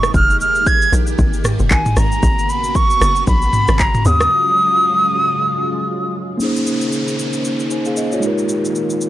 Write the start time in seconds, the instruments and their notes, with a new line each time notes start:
Already playing: log drum bass F1, string machine D#3 G#3 A#3 G4, flute C#6
0.03 cross-stick, shaker
0.14 log drum bass F1, flute F6, kick, shaker
0.30 shaker
0.41 flute F6, shaker
0.55 shaker
0.66 flute G#6, kick, shaker
0.82 shaker
0.93 log drum bass A#1, shaker
1.07 shaker
1.19 log drum bass G#1, kick, shaker
1.33 shaker
1.44 cross-stick, mid tom, shaker
1.59 log drum bass F1, shaker
1.71 log drum bass G#1, flute G#5, kick, clap, shaker
1.86 mid tom, shaker
1.97 log drum bass G#1, flute A#5, cross-stick, shaker
2.12 shaker
2.23 log drum bass G#1, string machine C#3 B3 F#4, kick, shaker
2.39 shaker
2.49 flute B5, shaker
2.64 shaker
2.75 flute C#6, kick, shaker
2.90 shaker
3.01 log drum bass F#1, cross-stick, shaker
3.16 shaker
3.27 log drum bass A#1, flute B5, kick, shaker
3.42 shaker
3.53 mid tom, shaker
3.68 log drum bass G#1, cross-stick, shaker
3.79 flute A#5, kick, clap, shaker
3.94 mid tom, shaker
4.05 log drum bass D#2, string machine F#3 G#3 F4, flute D#6, shaker
4.21 cross-stick, shaker
6.38 string machine C#3 A#3 D#4 G#4 C5, tine electric piano A#3 C#4 D#4, downlifter, shaker
6.43 tine electric piano G#4 C5
6.56 shaker
6.67 shaker
6.81 shaker
6.92 shaker
7.08 shaker
7.19 shaker
7.33 shaker
7.45 shaker
7.59 shaker
7.71 tine electric piano C5 G#5, shaker
7.85 tine electric piano G#4 F5, shaker
7.97 tine electric piano D#5, shaker
8.12 tine electric piano F4 C#5, shaker
8.20 string machine D#3 G#3 F4 G4, tine electric piano G#3 D#4 F4, shaker
8.25 tine electric piano G4 A#4
8.38 shaker
8.49 shaker
8.65 shaker
8.75 shaker
8.90 shaker
9.01 shaker